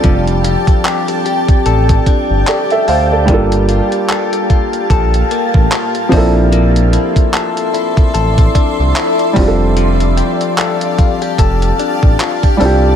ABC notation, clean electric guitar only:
X:1
M:4/4
L:1/16
Q:"Swing 16ths" 1/4=74
K:F
V:1 name="Clean electric guitar"
[F,DGA]2 G2 G A G2 A2 D2 G2 A2 | G,2 F2 A2 F2 A2 B,2 F2 B,2 | B,2 E2 A2 E2 A2 D2 E2 F,2 | F,2 G2 A2 F G A2 D2 F G A2 |]